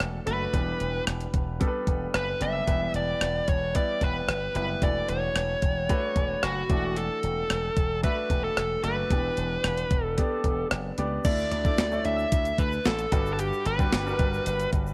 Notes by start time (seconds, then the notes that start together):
Already playing: E3 A3 D4 F#4 D5 F#5
0.00 E1, cross-stick, closed hi-hat
0.26 F#1 A3 D4 F#4 B4 D5, closed hi-hat
0.53 E1 E3 G3 B3 D4 B4, kick, closed hi-hat
0.80 E1, closed hi-hat
1.07 E1, cross-stick, closed hi-hat
1.20 closed hi-hat
1.34 E1, kick, closed hi-hat
1.60 G3 B3 D4 A4, kick, closed hi-hat
1.68 B4
1.87 E1, kick, closed hi-hat
2.14 F#1 B4, cross-stick, closed hi-hat
2.40 F#1 G3 B3 D4 B4 E5, closed hi-hat
2.67 E1 E3 G3 B3 E4 B4, kick, closed hi-hat
2.94 E1 D5, closed hi-hat
3.21 E1, cross-stick, closed hi-hat
3.48 E1 C#5, kick, closed hi-hat
3.74 G3 B3 E4 B4 D5, kick, closed hi-hat
4.01 E1 B4, kick, closed hi-hat
4.28 G1, cross-stick, closed hi-hat
4.55 F#1 G3 B3 E4 B4, closed hi-hat
4.82 E1 E3 A3 D4 F#4 B4 D5, kick, closed hi-hat
5.09 E1 C#5, closed hi-hat
5.35 E1, cross-stick, closed hi-hat
5.62 E1, kick, closed hi-hat
5.89 A3 D4 F#4 B4, kick, closed hi-hat
6.16 E1, kick, closed hi-hat
6.43 F#1 F#4, cross-stick, closed hi-hat
6.69 E1 E3 A3 D4 F#4 D5, kick, closed hi-hat
6.96 A4, closed hi-hat
7.23 E1, closed hi-hat
7.50 E1, cross-stick, closed hi-hat
7.77 E1, kick, closed hi-hat
8.03 A3 D4 F#4 B4 E5, kick, closed hi-hat
8.30 E1, kick, closed hi-hat
8.44 A4
8.57 E1, cross-stick, closed hi-hat
8.83 F#1 A3 D4 F#4 B4 D5, closed hi-hat
9.10 E1 E3 B3 D4 G4 D5, kick, closed hi-hat
9.37 E1, closed hi-hat
9.64 E1, cross-stick, closed hi-hat
9.77 closed hi-hat
9.91 E1, kick, closed hi-hat
10.04 A4
10.17 B3 D4 G4 D5, kick, closed hi-hat
10.44 E1, kick, closed hi-hat
10.71 F#1, cross-stick, closed hi-hat
10.98 C#2 B3 D4 G4 D5, closed hi-hat
11.24 D2 D3 A3 D4 E4 D5, kick, closed hi-hat, crash, shaker
11.38 shaker
11.51 D2 D5, closed hi-hat
11.65 A3 D4 E4 D5, kick, shaker
11.78 D2, snare, closed hi-hat, shaker
11.91 A3 D4 E4 C#5, shaker
11.99 D5
12.05 D2 E5, closed hi-hat
12.19 shaker
12.32 D2, kick, closed hi-hat, shaker
12.45 closed hi-hat, shaker
12.58 D2 B4, kick, closed hi-hat, shaker
12.72 shaker
12.85 A1 A4, snare, closed hi-hat, shaker
12.99 closed hi-hat, shaker
13.12 G1 G2 G3 D4 F#4 A4 B4, kick, closed hi-hat, shaker
13.26 shaker
13.33 A4
13.39 G4, closed hi-hat, shaker
13.53 shaker
13.66 G1 B4, closed hi-hat
13.79 G3 D4 F#4 B4, kick, shaker
13.92 G1, snare, closed hi-hat, tambourine, shaker
14.06 G3 D4 F#4 A#4, shaker
14.13 B4
14.19 G1, kick, closed hi-hat
14.34 shaker
14.46 G1, closed hi-hat, shaker
14.60 closed hi-hat, shaker
14.73 G1, kick, closed hi-hat, shaker
14.87 shaker